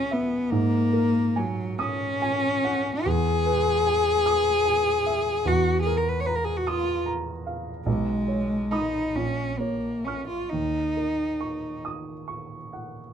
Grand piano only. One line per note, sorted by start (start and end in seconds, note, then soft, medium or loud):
0.00 0.47 C#2 medium
0.00 0.54 B4 soft
0.00 0.54 G#5 soft
0.00 0.53 D#6 soft
0.11 0.51 E5 soft
0.52 3.02 G#2 medium
0.93 1.62 A#4 soft
1.36 2.04 G#5 soft
1.79 2.47 D#6 medium
2.22 2.90 G#5 medium
2.64 3.06 F#5 soft
3.06 5.42 E2 medium
3.46 4.11 B4 soft
3.87 4.51 G#5 soft
4.26 4.90 D#6 soft
4.66 5.29 G#5 medium
5.06 5.46 E5 soft
5.45 7.82 E2 medium
5.86 6.51 A#4 soft
6.27 6.91 A#5 soft
6.67 7.30 D#6 soft
7.06 7.70 A#5 soft
7.47 7.87 F5 soft
7.86 9.10 B1 medium
8.28 8.97 C#5 soft
8.71 9.11 B5 soft
8.71 9.11 D#6 soft
9.15 10.48 A#1 soft
9.60 10.33 C#5 soft
10.07 10.48 C#6 soft
10.07 10.48 F6 soft
10.53 13.13 D#2 soft
10.97 11.67 A#4 soft
11.41 12.11 C#6 soft
11.85 12.56 D#6 soft
12.28 13.00 C#6 soft
12.73 13.13 F#5 soft